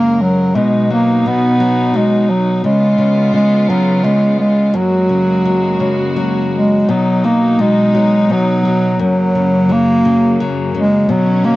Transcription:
0.00 0.54 F#2 medium
0.00 0.53 C#3 medium
0.00 0.55 F#3 medium
0.00 0.53 G#3 medium
0.00 0.23 A#3 medium
0.00 0.55 A#4 medium
0.21 0.57 F#3 medium
0.55 1.25 B2 medium
0.55 2.64 B2 medium
0.55 2.63 F#3 medium
0.55 0.91 G#3 medium
0.55 2.64 D#4 medium
0.90 1.59 F#3 soft
0.90 1.29 A#3 medium
1.26 1.93 B2 soft
1.26 1.97 B3 medium
1.60 2.61 F#3 medium
1.94 2.62 B2 soft
1.94 2.32 G#3 medium
2.30 2.64 F#3 medium
2.64 2.97 C#3 medium
2.64 4.74 C#3 medium
2.64 3.30 G#3 medium
2.64 4.73 B3 medium
2.64 4.73 F4 medium
2.98 3.32 C#3 soft
3.34 3.69 C#3 medium
3.34 3.71 G#3 medium
3.69 4.03 C#3 medium
3.69 4.06 F#3 medium
4.04 4.73 C#3 soft
4.04 4.39 G#3 medium
4.40 4.77 G#3 medium
4.74 6.84 F#2 medium
4.74 6.17 F#3 medium
4.74 6.86 G#3 medium
4.74 6.86 A#3 medium
4.74 6.86 F#4 medium
5.09 5.79 C#3 soft
5.45 6.15 F#3 soft
5.80 6.85 C#3 medium
6.16 6.86 F#3 soft
6.54 6.91 G#3 medium
6.88 8.97 B2 medium
6.88 7.58 B2 medium
6.88 8.97 F#3 medium
6.88 7.27 F#3 medium
6.88 8.97 D#4 medium
7.24 7.94 F#3 soft
7.24 7.62 A#3 medium
7.59 8.28 B2 medium
7.59 8.34 G#3 medium
7.95 8.64 F#3 medium
8.30 8.98 B2 soft
8.30 9.01 F#3 medium
8.65 8.99 F#3 medium
8.99 11.05 F#2 medium
8.99 11.07 F#2 medium
8.99 11.07 C#3 medium
8.99 9.74 F#3 medium
8.99 11.07 A#3 medium
9.35 10.04 C#3 soft
9.69 10.39 F#3 medium
9.69 10.49 A#3 loud
10.05 10.73 C#3 medium
10.40 11.07 F#3 soft
10.75 11.08 C#3 medium
10.75 11.12 G#3 medium
11.09 11.56 B2 medium
11.09 11.56 D3 medium
11.09 11.47 F#3 medium
11.09 11.56 C#4 medium
11.44 11.56 F#3 soft
11.44 11.56 A#3 medium

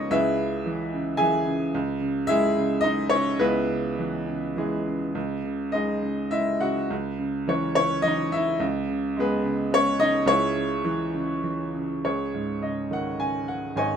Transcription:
0.00 0.11 C#2 medium
0.00 0.13 C#3 medium
0.00 0.14 G#3 medium
0.00 0.14 B3 soft
0.00 0.14 C#4 medium
0.00 0.13 D#4 medium
0.00 0.11 G#4 soft
0.00 0.11 B4 medium
0.00 0.14 C#5 medium
0.00 0.12 D#5 medium
0.11 1.70 C#2 medium
0.11 1.15 E4 medium
0.11 1.15 G#4 medium
0.11 1.16 B4 medium
0.11 1.15 E5 loud
0.38 0.92 C#3 medium
0.66 1.19 E3 medium
0.93 1.45 C#3 medium
1.17 1.73 E3 medium
1.17 1.57 G#4 medium
1.17 1.56 E5 medium
1.17 1.56 G#5 medium
1.46 1.73 C#3 medium
1.75 3.38 C#2 medium
2.01 2.56 C#3 medium
2.27 2.82 G#3 medium
2.27 2.81 E4 medium
2.27 2.81 G#4 medium
2.27 2.86 E5 loud
2.58 3.11 C#3 medium
2.81 3.39 G#3 medium
2.81 3.10 D#4 medium
2.81 3.12 D#5 loud
3.10 3.40 C#3 medium
3.10 3.39 C#4 medium
3.10 3.38 C#5 medium
3.39 5.12 C#2 medium
3.39 4.53 B3 medium
3.39 4.53 E4 medium
3.39 4.53 G#4 medium
3.39 4.53 B4 medium
3.69 4.26 C#3 medium
3.99 4.55 E3 medium
4.27 4.85 C#3 medium
4.57 5.14 E3 soft
4.57 4.99 G#3 soft
4.57 4.99 E4 soft
4.57 4.99 G#4 medium
4.87 5.15 C#3 soft
5.15 6.87 C#2 medium
5.44 6.01 C#3 medium
5.72 6.30 G#3 medium
5.72 6.29 D#4 medium
5.72 6.29 G#4 soft
5.72 6.33 D#5 medium
6.02 6.58 C#3 medium
6.31 6.89 G#3 medium
6.31 6.59 E4 medium
6.31 6.62 E5 medium
6.60 6.89 C#3 medium
6.60 6.89 F#4 medium
6.60 6.88 F#5 medium
6.90 8.56 C#2 medium
7.18 7.74 C#3 medium
7.47 8.01 E3 medium
7.47 7.76 C#4 medium
7.47 7.74 C#5 medium
7.75 8.30 C#3 medium
7.75 8.05 C#5 loud
7.80 8.04 C#4 medium
8.02 8.58 E3 medium
8.02 8.29 D#5 medium
8.08 8.32 D#4 medium
8.32 8.59 C#3 medium
8.32 8.60 E4 medium
8.32 8.59 E5 medium
8.60 10.23 C#2 medium
8.88 9.42 C#3 medium
9.17 9.69 G#3 medium
9.17 9.69 B3 medium
9.17 9.69 G#4 medium
9.17 9.75 B4 medium
9.44 9.97 C#3 medium
9.71 10.25 G#3 medium
9.71 9.99 C#4 medium
9.71 10.01 C#5 loud
9.99 10.26 C#3 medium
9.99 10.26 D#4 medium
9.99 10.25 D#5 loud
10.26 11.99 C#2 medium
10.26 11.40 C#4 medium
10.26 11.40 E4 medium
10.26 11.40 G#4 medium
10.26 11.39 C#5 medium
10.56 11.12 C#3 medium
10.85 11.42 E3 medium
11.14 11.73 C#3 medium
11.43 12.02 E3 medium
11.74 12.03 C#3 medium
12.05 13.74 C#2 medium
12.05 12.89 G#4 soft
12.05 12.66 C#5 medium
12.34 13.45 G#2 soft
12.62 13.17 C#3 soft
12.62 12.90 D#5 medium
12.91 13.97 D#3 medium
12.91 13.22 F#5 medium
13.19 13.97 C#3 soft
13.19 13.49 G#5 medium
13.48 13.78 F#5 medium
13.76 13.97 G#1 medium
13.76 13.97 C#5 medium
13.76 13.97 D#5 medium
13.76 13.97 G#5 medium

